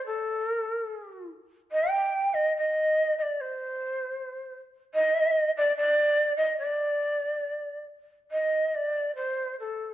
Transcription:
0.05 A4
0.48 A#4
0.60 A4
0.72 A#4
0.84 A4
1.71 G5
2.33 D#5
2.57 D#5
3.18 D#5
3.22 D5
3.40 C5
4.94 D#5
5.56 D5
5.76 D5
6.36 D#5
6.58 D5
8.31 D#5
8.75 D5
9.15 C5
9.59 A4

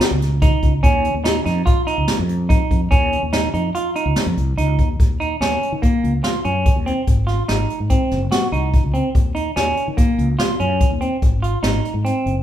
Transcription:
0.01 snare, closed hi-hat
0.11 C#2
0.22 snare, closed hi-hat
0.42 D#4, kick, closed hi-hat
0.63 C#2, kick, closed hi-hat
0.83 D#2 C#4, kick, closed hi-hat
1.05 closed hi-hat
1.14 D#2
1.24 D#4, snare, closed hi-hat
1.46 F2 D#4, snare, closed hi-hat
1.66 F4, kick, closed hi-hat
1.87 D#4, closed hi-hat
1.98 C#2
2.08 snare, closed hi-hat
2.19 F2
2.29 closed hi-hat
2.49 D#4, kick, closed hi-hat
2.71 F2, kick, closed hi-hat
2.91 D#2 C#4, kick, closed hi-hat
3.13 closed hi-hat
3.23 D#2
3.33 D#4, snare, closed hi-hat
3.54 F2 D#4, closed hi-hat
3.75 F4, closed hi-hat
3.96 D#4, closed hi-hat
4.06 C#2
4.16 snare, closed hi-hat
4.26 F2
4.37 C2, closed hi-hat
4.58 C#2 D#4, closed hi-hat
4.79 D#2, kick, closed hi-hat
5.00 D#2, kick, closed hi-hat
5.20 D#4, closed hi-hat
5.40 D#2 C#4, snare, closed hi-hat
5.63 closed hi-hat
5.72 D#3
5.82 A#3, kick, closed hi-hat
6.04 C#2, closed hi-hat
6.24 F4, snare, closed hi-hat
6.45 F#2 C#4, closed hi-hat
6.66 kick, closed hi-hat
6.76 D#2
6.86 C4, closed hi-hat
7.07 G#1, kick, closed hi-hat
7.27 F4, snare, closed hi-hat
7.48 G#1 D#4, snare, closed hi-hat
7.70 closed hi-hat
7.80 G#2
7.90 C4, kick, closed hi-hat
8.11 F#1, snare, closed hi-hat
8.32 F#4, snare, closed hi-hat
8.52 C2 D#4, closed hi-hat
8.74 kick, closed hi-hat
8.83 C#2
8.94 C4, closed hi-hat
9.15 D#2, kick, closed hi-hat
9.35 D#4, closed hi-hat
9.56 D#2 C#4, snare, closed hi-hat
9.77 closed hi-hat
9.88 D#3
9.97 A#3, kick, closed hi-hat
10.18 C#2, closed hi-hat
10.39 F4, snare, closed hi-hat
10.60 F#2 C#4, closed hi-hat
10.81 kick, closed hi-hat
10.91 D#2
11.01 C4, closed hi-hat
11.22 G#1, kick, closed hi-hat
11.42 F4, closed hi-hat
11.63 G#1 D#4, snare, closed hi-hat
11.85 closed hi-hat
11.94 G#2
12.05 C4, closed hi-hat
12.26 F#1, closed hi-hat

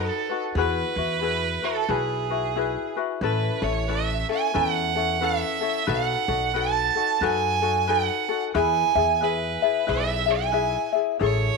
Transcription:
Already playing: D#4 F#4 A4 B4
0.30 D#4 F#4 B4
0.55 E2 E4 F#4 G#4 B4
0.96 E2 E4 F#4 B4
1.21 E4 F#4 G#4 B4
1.62 E4 F#4 A4 B4
1.88 B1 E4 F#4 G#4 B4
2.30 E4 F#4 B4
2.56 E4 F#4 G#4 B4
2.97 E4 F#4 B4
3.21 A1 C#4 E4 A4 B4
3.62 A1 C#4 E4 A4 C#5
3.88 C#4 E4 A4 B4 E5
4.29 C#4 E4 A4 G#5
4.54 E2 C#4 E4 A4 B4 F#5
4.95 C#4 E4 A4
5.21 C#4 E4 A4 B4 E5
5.61 C#4 E4 A4
5.87 B1 D#4 F#4 A4 B4 F#5
6.28 B1 D#4 F#4 A4
6.54 D#4 F#4 A4 B4 A5
6.95 D#4 F#4 A4
7.21 F#2 D#4 F#4 A4 B4 G#5
7.62 D#4 F#4 A4
7.87 D#4 F#4 A4 B4 F#5
8.29 D#4 F#4 A4
8.54 E2 E4 G#4 B4 E5 G#5
8.95 E2 E4 G#4 E5
9.21 E4 G#4 B4 E5
9.62 E4 G#4 E5
9.87 B1 E4 G#4 B4 E5
10.26 E4 G#4 E5
10.30 G#5
10.52 E4 G#4 B4 E5
10.93 E4 G#4 E5
11.19 A1 E4 G#4 A4 C#5

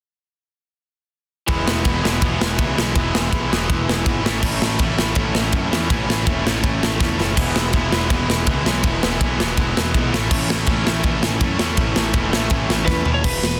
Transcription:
1.48 E1 E2 B2 E3 G#3 B3 E4, kick, ride
1.67 E1, snare
1.84 E1 E2 B2 E3 G#3 B3 E4, kick, ride
2.02 E1 E2 B2 E3 G#3 B3 E4, snare
2.20 E1 E2 B2 E3 G#3 B3 E4, kick, ride
2.41 E1, snare
2.57 C#2 E2 B2 E3 G#3 B3 E4, kick, ride
2.76 B1 E2 B2 E3 G#3 B3 E4, snare
2.94 E1 E2 B2 E3 G#3 B3 E4, kick, ride
3.15 E1, snare
3.31 B1 E2 B2 E3 G#3 B3 E4, kick, ride
3.50 E1 E2 B2 E3 G#3 B3 E4, snare
3.54 E3
3.67 E1 E2 B2 E3 G#3 B3 E4, kick, ride
3.88 E1, snare
4.05 G#1 E2 B2 E3 G#3 B3 E4, kick, ride
4.22 A1 A2 E3 A3 C#4 E4, snare
4.41 A1 A2 E3 A3 C#4 E4, kick, crash
4.61 A1, snare
4.78 A1 A2 E3 A3 C#4 E4, kick, ride
4.96 A1 A2 E3 A3 C#4 E4, snare
5.15 A1 A2 E3 A3 C#4 E4, kick, ride
5.34 A1, snare
5.52 F#2 A2 E3 A3 C#4 E4, kick, ride
5.70 E2 A2 E3 A3 C#4 E4, snare
5.89 A1 A2 E3 A3 C#4 E4, kick, ride
6.08 A1, snare
6.26 E1 A2 E3 A3 C#4 E4, kick, ride
6.44 A1 A2 E3 A3 C#4 E4, snare
6.62 A1 A2 E3 A3 C#4 E4, kick, ride
6.82 A1, snare
6.99 E2 A2 E3 A3 C#4 E4, kick, snare
7.18 F#1 A2 E3 A3 C#4 E4, snare
7.35 E1 E2 B2 E3 G#3 B3 E4, kick, crash
7.55 E1, snare
7.72 E1 E2 B2 E3 G#3 B3 E4, kick, ride
7.91 E1 E2 B2 E3 G#3 B3 E4, snare
8.10 E1 E2 B2 E3 G#3 B3 E4, kick, ride
8.28 E1, snare
8.47 C#2 E2 B2 E3 G#3 B3 E4, kick, ride
8.65 B1 E2 B2 E3 G#3 B3 E4, snare
8.83 E1 E2 B2 E3 G#3 B3 E4, kick, ride
9.03 E1, snare
9.20 B1 E2 B2 E3 G#3 B3 E4, kick, ride
9.38 E1 E2 B2 E3 G#3 B3 E4, snare
9.56 E1 E2 B2 E3 G#3 B3 E4, kick, ride
9.76 E1, snare
9.94 B1 E2 B2 E3 G#3 B3 E4, kick, ride
10.11 A1 A2 E3 A3 C#4 E4, snare
10.30 A1 A2 E3 A3 C#4 E4, kick, crash
10.49 A1, snare
10.65 A1 A2 E3 A3 C#4 E4, kick, ride
10.84 A1 A2 E3 A3 C#4 E4, snare
11.03 A1 A2 E3 A3 C#4 E4, kick, ride
11.23 A1, snare
11.40 F#2 A2 E3 A3 C#4 E4, kick, ride
11.58 E2 A2 E3 A3 C#4 E4, snare
11.76 A1 A2 E3 A3 C#4 E4, kick, ride
11.96 A1, snare
12.13 E1 A2 E3 A3 C#4 E4, kick, ride
12.31 A1 A2 E3 A3 C#4 E4, snare
12.49 A1 A2 E3 A3 C#4 E4, kick, ride
12.69 A1, snare
12.85 E2 A2 E3 A3 C#4 E4 B4, kick, snare
13.04 D#2 A2 E3 A3 C#4 E4, floor tom
13.14 C#5
13.22 E1 E2 B2 E3 B4, kick, crash
13.41 E1 E2 B2, snare

